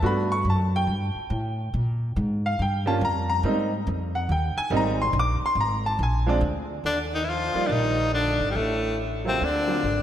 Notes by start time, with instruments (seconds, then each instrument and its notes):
0.02 upright bass G2, grand piano A3 B3 D4 F#4 B5
0.32 grand piano C#6
0.45 upright bass F#2
0.50 grand piano A5
0.76 grand piano G5
0.87 upright bass G2
1.15 muted upright bass stroke
1.30 upright bass A2
1.74 upright bass A#2
2.16 upright bass G#2
2.46 grand piano F5
2.59 upright bass G2, grand piano G5
2.86 grand piano G3 A#3 C#4 F4 A5
3.01 upright bass F2, grand piano A#5
3.30 grand piano A#5
3.43 upright bass G#2, grand piano G3 A#3 C4 D#4
3.87 upright bass F2
4.15 grand piano F#5
4.29 upright bass D#2, grand piano G5
4.57 grand piano G#5, muted upright bass stroke
4.70 upright bass G#1, grand piano G3 A#3 C4 D#4
4.77 grand piano A#5
5.02 grand piano C6
5.13 upright bass A#1
5.19 grand piano D6
5.41 muted upright bass stroke
5.46 grand piano C6
5.55 upright bass G#1
5.61 grand piano A#5
5.86 grand piano A5
5.99 upright bass A#1
6.03 grand piano G#5
6.26 grand piano F3 G#3 C4 D4 D5
6.41 upright bass D2
6.84 upright bass D#2, trombone D3, tenor saxophone D4
7.14 trombone D#3, tenor saxophone D#4
7.22 trombone E3, tenor saxophone E4
7.28 trombone F3, tenor saxophone F4
7.54 grand piano F3 G3 A#3 D5, muted upright bass stroke
7.67 upright bass A#1, trombone D3 D#3, tenor saxophone D4
7.72 tenor saxophone D#4
8.13 trombone D3, tenor saxophone D4
8.40 upright bass G#1
8.51 trombone G2, tenor saxophone G3
8.55 upright bass A1, trombone A2, tenor saxophone A3
9.25 trombone C3, grand piano F#3 A#3 C4 F4, tenor saxophone C4
9.41 upright bass D2, trombone D3, tenor saxophone D4
9.67 grand piano F#3 A#3 C4 F4
9.83 upright bass G#1